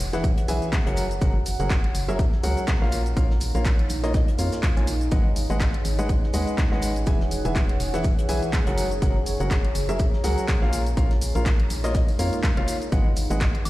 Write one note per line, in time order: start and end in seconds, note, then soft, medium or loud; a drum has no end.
0.00 0.34 E1 medium
0.00 1.76 D#4 medium
0.00 2.92 G#4 medium
0.00 2.92 C#5 medium
0.00 2.92 F#5 medium
0.00 open hi-hat loud
0.00 cabasa medium
0.00 shaker medium
0.13 0.23 E3 medium
0.13 0.23 G#4 medium
0.13 0.23 B4 medium
0.13 0.23 E5 medium
0.13 0.23 F#5 loud
0.13 snare medium
0.13 closed hi-hat soft
0.13 cabasa soft
0.24 kick loud
0.24 closed hi-hat medium
0.24 cabasa soft
0.24 shaker medium
0.38 closed hi-hat soft
0.48 0.60 B1 medium
0.48 0.68 E3 medium
0.48 0.68 G#4 medium
0.48 0.68 B4 medium
0.48 0.68 E5 medium
0.48 0.68 G#5 loud
0.48 open hi-hat loud
0.48 cabasa medium
0.48 shaker medium
0.62 closed hi-hat soft
0.62 cabasa soft
0.72 kick loud
0.72 snare loud
0.72 clap loud
0.72 closed hi-hat medium
0.72 cabasa soft
0.72 shaker medium
0.86 1.19 F#1 medium
0.86 1.04 F#3 medium
0.86 1.04 G#4 medium
0.86 1.04 A#4 medium
0.86 1.04 C#5 medium
0.86 1.04 F#5 loud
0.86 closed hi-hat soft
0.97 open hi-hat loud
0.97 cabasa medium
0.97 shaker medium
1.11 closed hi-hat soft
1.11 cabasa soft
1.22 1.56 F#1 medium
1.22 1.35 F#3 medium
1.22 1.35 G#4 medium
1.22 1.35 A#4 medium
1.22 1.35 C#5 medium
1.22 1.35 F#5 loud
1.22 kick loud
1.22 closed hi-hat medium
1.22 cabasa soft
1.22 shaker medium
1.46 open hi-hat loud
1.46 cabasa medium
1.46 shaker medium
1.58 1.92 F#1 loud
1.58 1.70 F#3 medium
1.58 1.70 G#4 medium
1.58 1.70 A#4 medium
1.58 1.70 C#5 medium
1.58 1.70 F#5 medium
1.58 3.81 A#5 medium
1.58 closed hi-hat soft
1.58 cabasa soft
1.70 kick loud
1.70 snare loud
1.70 clap loud
1.70 closed hi-hat medium
1.70 cabasa soft
1.70 shaker medium
1.84 closed hi-hat soft
1.95 2.29 F#1 medium
1.95 open hi-hat loud
1.95 cabasa medium
1.95 shaker medium
2.08 2.19 F#3 medium
2.08 2.19 G#4 medium
2.08 2.19 A#4 medium
2.08 2.19 C#5 medium
2.08 2.19 E5 loud
2.08 closed hi-hat soft
2.08 cabasa soft
2.19 kick loud
2.19 closed hi-hat medium
2.19 cabasa soft
2.19 shaker medium
2.32 snare soft
2.43 2.55 C#2 medium
2.43 2.63 F#3 medium
2.43 2.63 G#4 medium
2.43 2.63 A#4 medium
2.43 2.63 C#5 medium
2.43 2.63 F#5 loud
2.43 open hi-hat loud
2.43 cabasa medium
2.43 shaker medium
2.57 closed hi-hat soft
2.57 cabasa soft
2.67 kick loud
2.67 snare loud
2.67 clap loud
2.67 closed hi-hat medium
2.67 cabasa soft
2.67 shaker medium
2.82 3.14 A#1 medium
2.82 2.99 A#3 medium
2.82 2.99 F4 medium
2.82 2.99 A#4 medium
2.82 2.99 C#5 medium
2.82 2.99 F5 loud
2.82 snare soft
2.92 9.56 D#4 medium
2.92 open hi-hat loud
2.92 cabasa medium
2.92 shaker medium
3.04 13.70 G#4 medium
3.04 closed hi-hat soft
3.04 cabasa soft
3.17 3.51 A#1 medium
3.17 3.30 A#3 medium
3.17 3.30 F4 medium
3.17 3.30 A#4 medium
3.17 3.30 C#5 medium
3.17 3.30 F5 medium
3.17 kick loud
3.17 closed hi-hat medium
3.17 cabasa soft
3.17 shaker medium
3.30 snare medium
3.41 open hi-hat loud
3.41 cabasa medium
3.41 shaker medium
3.52 3.87 A#1 loud
3.52 3.65 A#3 medium
3.52 3.65 F4 medium
3.52 3.65 A#4 medium
3.52 13.70 C#5 medium
3.52 3.65 C#5 medium
3.52 3.65 F5 medium
3.52 closed hi-hat soft
3.52 cabasa soft
3.65 5.12 F5 medium
3.65 kick loud
3.65 snare loud
3.65 clap loud
3.65 closed hi-hat medium
3.65 cabasa soft
3.65 shaker medium
3.79 closed hi-hat soft
3.90 4.25 A#1 medium
3.90 open hi-hat loud
3.90 cabasa medium
3.90 shaker medium
4.03 4.14 A#3 medium
4.03 4.14 F4 medium
4.03 4.14 A#4 medium
4.03 4.14 C#5 medium
4.03 4.14 D#5 loud
4.03 snare soft
4.03 closed hi-hat soft
4.03 cabasa soft
4.14 kick loud
4.14 snare medium
4.14 closed hi-hat medium
4.14 cabasa soft
4.14 shaker medium
4.28 closed hi-hat soft
4.38 4.50 F2 medium
4.38 4.73 A#3 medium
4.38 4.73 F4 medium
4.38 4.73 A#4 medium
4.38 4.73 C#5 medium
4.38 4.73 F5 medium
4.38 open hi-hat loud
4.38 cabasa medium
4.38 shaker medium
4.52 snare medium
4.52 closed hi-hat soft
4.52 cabasa soft
4.52 shaker medium
4.63 kick loud
4.63 clap loud
4.63 closed hi-hat medium
4.63 closed hi-hat soft
4.63 cabasa soft
4.77 5.09 A#1 medium
4.77 4.87 A#3 medium
4.77 4.87 F4 medium
4.77 4.87 A#4 medium
4.77 4.87 C#5 medium
4.77 4.87 G#5 medium
4.77 shaker soft
4.87 open hi-hat loud
4.87 cabasa medium
4.87 shaker medium
5.01 closed hi-hat soft
5.01 cabasa soft
5.12 5.46 G#1 medium
5.12 5.25 G#3 medium
5.12 5.25 G#4 medium
5.12 5.25 B4 medium
5.12 5.25 D#5 medium
5.12 5.25 F#5 loud
5.12 kick loud
5.12 closed hi-hat medium
5.12 cabasa soft
5.12 shaker medium
5.36 open hi-hat loud
5.36 cabasa medium
5.36 shaker medium
5.50 5.82 G#1 loud
5.50 5.60 G#3 medium
5.50 5.60 G#4 medium
5.50 5.60 B4 medium
5.50 5.60 D#5 medium
5.50 5.60 F#5 medium
5.50 closed hi-hat soft
5.50 cabasa soft
5.61 kick loud
5.61 snare loud
5.61 clap loud
5.61 closed hi-hat medium
5.61 cabasa soft
5.61 shaker medium
5.74 closed hi-hat soft
5.85 6.20 G#1 medium
5.85 open hi-hat loud
5.85 cabasa medium
5.85 shaker medium
5.99 6.09 G#3 medium
5.99 6.09 G#4 medium
5.99 6.09 B4 medium
5.99 6.09 D#5 medium
5.99 6.09 F#5 loud
5.99 10.73 F#5 medium
5.99 closed hi-hat soft
5.99 cabasa soft
6.09 kick loud
6.09 closed hi-hat medium
6.09 cabasa soft
6.09 shaker medium
6.24 snare soft
6.33 6.45 D#2 medium
6.33 6.53 G#3 medium
6.33 6.53 G#4 medium
6.33 6.53 B4 medium
6.33 6.53 D#5 medium
6.33 6.53 F#5 loud
6.33 open hi-hat loud
6.33 cabasa medium
6.33 shaker medium
6.47 closed hi-hat soft
6.47 cabasa soft
6.58 kick loud
6.58 snare loud
6.58 clap loud
6.58 closed hi-hat medium
6.58 cabasa soft
6.58 shaker medium
6.72 7.04 G#1 medium
6.72 6.90 G#3 medium
6.72 6.90 G#4 medium
6.72 6.90 B4 medium
6.72 6.90 D#5 medium
6.72 6.90 F#5 loud
6.72 snare soft
6.82 open hi-hat loud
6.82 cabasa medium
6.82 shaker medium
6.96 closed hi-hat soft
6.96 cabasa soft
7.06 7.42 E1 medium
7.06 7.20 E3 medium
7.06 7.20 G#4 medium
7.06 7.20 B4 medium
7.06 7.20 E5 medium
7.06 7.20 G#5 loud
7.06 kick loud
7.06 closed hi-hat medium
7.06 cabasa soft
7.06 shaker medium
7.21 snare medium
7.31 open hi-hat loud
7.31 cabasa medium
7.31 shaker medium
7.45 7.77 E1 loud
7.45 7.55 E3 medium
7.45 7.55 G#4 medium
7.45 7.55 B4 medium
7.45 7.55 E5 medium
7.45 7.55 G#5 medium
7.45 closed hi-hat soft
7.45 cabasa soft
7.56 kick loud
7.56 snare loud
7.56 clap loud
7.56 closed hi-hat medium
7.56 cabasa soft
7.56 shaker medium
7.69 closed hi-hat medium
7.80 8.15 E1 medium
7.80 open hi-hat loud
7.80 cabasa medium
7.80 shaker medium
7.94 8.04 E3 medium
7.94 8.04 G#4 medium
7.94 8.04 B4 medium
7.94 8.04 E5 medium
7.94 8.04 F#5 loud
7.94 snare medium
7.94 closed hi-hat soft
7.94 cabasa soft
8.04 kick loud
8.04 closed hi-hat medium
8.04 cabasa soft
8.04 shaker medium
8.19 closed hi-hat soft
8.29 8.40 B1 medium
8.29 8.48 E3 medium
8.29 8.48 G#4 medium
8.29 8.48 B4 medium
8.29 8.48 E5 medium
8.29 8.48 G#5 loud
8.29 open hi-hat loud
8.29 cabasa medium
8.29 shaker medium
8.43 closed hi-hat soft
8.43 cabasa soft
8.53 kick loud
8.53 snare loud
8.53 clap loud
8.53 closed hi-hat medium
8.53 cabasa soft
8.53 shaker medium
8.67 8.99 F#1 medium
8.67 8.85 F#3 medium
8.67 8.85 G#4 medium
8.67 8.85 A#4 medium
8.67 8.85 C#5 medium
8.67 8.85 F#5 loud
8.67 closed hi-hat soft
8.78 open hi-hat loud
8.78 cabasa medium
8.78 shaker medium
8.91 closed hi-hat soft
8.91 cabasa soft
9.02 9.37 F#1 medium
9.02 9.15 F#3 medium
9.02 9.15 G#4 medium
9.02 9.15 A#4 medium
9.02 9.15 C#5 medium
9.02 9.15 F#5 loud
9.02 kick loud
9.02 closed hi-hat medium
9.02 cabasa soft
9.02 shaker medium
9.10 11.62 A#5 medium
9.26 open hi-hat loud
9.26 cabasa medium
9.26 shaker medium
9.40 9.72 F#1 loud
9.40 9.50 F#3 medium
9.40 9.50 G#4 medium
9.40 9.50 A#4 medium
9.40 9.50 C#5 medium
9.40 9.50 F#5 medium
9.40 closed hi-hat soft
9.40 cabasa soft
9.51 kick loud
9.51 snare loud
9.51 clap loud
9.51 closed hi-hat medium
9.51 cabasa soft
9.51 shaker medium
9.65 closed hi-hat medium
9.75 10.10 F#1 medium
9.75 open hi-hat loud
9.75 cabasa medium
9.75 shaker medium
9.89 9.99 F#3 medium
9.89 9.99 G#4 medium
9.89 9.99 A#4 medium
9.89 9.99 C#5 medium
9.89 9.99 E5 loud
9.89 closed hi-hat medium
9.89 cabasa soft
9.99 kick loud
9.99 closed hi-hat medium
9.99 cabasa soft
9.99 shaker medium
10.13 snare soft
10.24 10.36 C#2 medium
10.24 10.43 F#3 medium
10.24 10.43 G#4 medium
10.24 10.43 A#4 medium
10.24 10.43 C#5 medium
10.24 10.43 F#5 loud
10.24 snare loud
10.24 open hi-hat loud
10.24 cabasa medium
10.24 shaker medium
10.38 closed hi-hat soft
10.38 cabasa soft
10.48 kick loud
10.48 snare medium
10.48 clap loud
10.48 closed hi-hat medium
10.48 cabasa soft
10.48 shaker medium
10.62 10.94 A#1 medium
10.62 10.80 A#3 loud
10.62 10.80 F4 medium
10.62 10.80 A#4 medium
10.62 10.80 C#5 medium
10.62 10.80 F5 loud
10.62 snare soft
10.73 13.70 D#4 medium
10.73 open hi-hat loud
10.73 cabasa medium
10.87 closed hi-hat soft
10.87 cabasa soft
10.97 11.32 A#1 loud
10.97 11.10 A#3 medium
10.97 11.10 F4 medium
10.97 11.10 A#4 medium
10.97 11.10 C#5 medium
10.97 11.10 F5 loud
10.97 kick loud
10.97 closed hi-hat medium
10.97 cabasa soft
10.97 shaker medium
11.11 snare medium
11.11 closed hi-hat soft
11.21 open hi-hat loud
11.21 cabasa medium
11.21 shaker medium
11.35 11.68 A#1 loud
11.35 11.45 A#3 medium
11.35 11.45 F4 medium
11.35 11.45 A#4 medium
11.35 11.45 C#5 medium
11.35 11.45 F5 medium
11.35 closed hi-hat soft
11.35 cabasa soft
11.42 12.92 F5 medium
11.46 kick loud
11.46 snare loud
11.46 clap loud
11.46 closed hi-hat medium
11.46 cabasa soft
11.46 shaker medium
11.60 closed hi-hat medium
11.70 12.05 A#1 medium
11.70 open hi-hat loud
11.70 cabasa medium
11.70 shaker medium
11.84 11.94 A#3 medium
11.84 11.94 F4 medium
11.84 11.94 A#4 medium
11.84 11.94 C#5 medium
11.84 11.94 D#5 loud
11.84 snare medium
11.84 closed hi-hat medium
11.84 cabasa soft
11.94 kick loud
11.94 snare loud
11.94 closed hi-hat medium
11.94 swell medium
11.94 cabasa soft
11.94 shaker medium
12.08 open hi-hat medium
12.19 12.31 F2 medium
12.19 12.38 A#3 medium
12.19 12.38 F4 medium
12.19 12.38 A#4 medium
12.19 12.38 C#5 medium
12.19 12.38 F5 loud
12.19 open hi-hat loud
12.19 cabasa medium
12.19 shaker medium
12.33 closed hi-hat soft
12.33 cabasa soft
12.43 kick loud
12.43 snare loud
12.43 clap loud
12.43 closed hi-hat medium
12.43 cabasa soft
12.43 shaker medium
12.57 12.66 F1 medium
12.57 12.75 A#3 medium
12.57 12.75 F4 medium
12.57 12.75 A#4 medium
12.57 12.75 C#5 medium
12.57 12.75 F5 loud
12.57 closed hi-hat soft
12.68 open hi-hat loud
12.68 cabasa medium
12.68 shaker medium
12.82 closed hi-hat soft
12.82 cabasa soft
12.92 13.27 G#1 medium
12.92 13.05 G#3 medium
12.92 13.05 G#4 medium
12.92 13.05 B4 medium
12.92 13.05 D#5 medium
12.92 13.05 F#5 loud
12.92 kick loud
12.92 closed hi-hat medium
12.92 cabasa soft
12.92 shaker medium
13.16 open hi-hat loud
13.16 cabasa medium
13.16 shaker medium
13.30 13.63 G#1 loud
13.30 13.40 G#3 medium
13.30 13.40 G#4 medium
13.30 13.40 B4 medium
13.30 13.40 D#5 medium
13.30 13.40 F#5 medium
13.30 closed hi-hat soft
13.30 cabasa soft
13.41 kick loud
13.41 snare loud
13.41 clap loud
13.41 closed hi-hat medium
13.41 cabasa soft
13.41 shaker medium
13.55 closed hi-hat medium
13.65 13.70 G#1 medium
13.65 open hi-hat loud
13.65 cabasa medium
13.65 high woodblock medium
13.65 shaker medium